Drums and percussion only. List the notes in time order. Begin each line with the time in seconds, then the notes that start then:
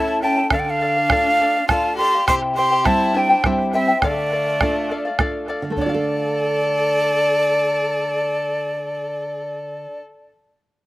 0.08 bombo rim
0.22 bombo rim
0.50 bombo rim, bombo low
0.66 bombo rim
1.10 bombo rim, bombo low
1.69 bombo rim, bombo low
1.84 bombo rim
1.99 bombo rim
2.28 bombo rim, bombo low
2.42 bombo rim
2.85 bombo rim, bombo low
3.44 bombo rim, bombo low
3.58 bombo rim
3.73 bombo rim
4.02 bombo rim, bombo low
4.61 bombo rim, bombo low
4.90 bombo rim
5.19 bombo rim, bombo low
5.77 bombo low